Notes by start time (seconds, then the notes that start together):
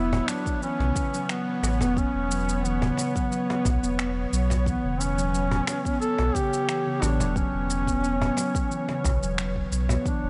Already playing: E1 B3 E4 C#5
0.13 cajon bass
0.28 F#3 D4, finger snap, cajon slap, shaker
0.46 kick, shaker
0.62 E3 C#4, shaker
0.80 B1 C#3, cajon slap
0.96 kick, shaker
1.14 F#3, shaker
1.29 F#3 B3, finger snap, shaker
1.63 A1, cajon slap, shaker
1.81 E1 B3, cajon bass, shaker
1.97 C#4, kick, shaker
2.15 E1
2.30 F#3, shaker
2.49 shaker
2.64 E3 B3, shaker
2.82 C#3, cajon bass
2.97 cajon slap, shaker
3.16 F#3, kick, shaker
3.32 F#3, shaker
3.50 cajon slap
3.65 B1, kick, cajon bass, shaker
3.83 E1 B3, shaker
3.99 B3, finger snap, shaker
4.33 B1 F#3, shaker
4.50 cajon bass, cajon slap, shaker
4.66 E3 B3, kick, shaker
4.84 E1 C#3
5.00 C#4, shaker
5.18 F#3, shaker
5.34 F#3, shaker
5.51 cajon bass
5.67 finger snap, cajon slap, shaker
5.85 B3, kick, shaker
6.01 B3 A4, shaker
6.18 B1, cajon slap
6.35 C#3 G4, kick, shaker
6.53 shaker
6.68 E3, finger snap, shaker
6.86 C#3
7.02 A1 D4, cajon slap, shaker
7.20 E1 F#3, cajon bass, shaker
7.36 F#3 C#4, kick, shaker
7.53 E1
7.70 shaker
7.87 B3, kick, shaker
8.03 B3, shaker
8.22 cajon bass
8.37 F#3, cajon slap, shaker
8.55 kick, shaker
8.71 E3, shaker
8.89 C#3, cajon slap
9.04 B1, kick, cajon bass, shaker
9.22 E1 F#3, shaker
9.38 F#3, finger snap, shaker
9.56 kick
9.72 B1, shaker
9.89 B3, cajon bass, cajon slap, shaker
10.06 E3 B3 D4 E4 F#5, kick, shaker
10.23 E1